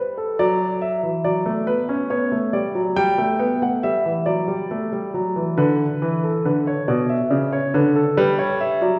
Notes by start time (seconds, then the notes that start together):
Already playing: G3 B4
0.18 A4
0.39 F#3 D5
0.81 E5
1.03 E3
1.24 F#3 D5
1.46 A3
1.67 B3 B4
1.89 C#4
2.10 B3 C#5
2.32 A3
2.53 G3 D5
2.75 F#3
2.96 G3 G5
3.18 A3
3.39 B3
3.62 A3 F#5
3.83 G3 E5
4.06 E3
4.26 F#3 D5
4.48 G3
4.71 A3
4.92 G3
5.14 F#3
5.36 E3
5.58 D3 B4
6.02 E3
6.24 A4
6.45 D3 B4
6.67 C#5
6.88 B2 D5
7.09 E5
7.30 C#3 D5
7.52 C#5
7.74 D3 B4
7.96 A4
8.17 G3 B4
8.39 C#5
8.60 E5
8.82 F#3 D5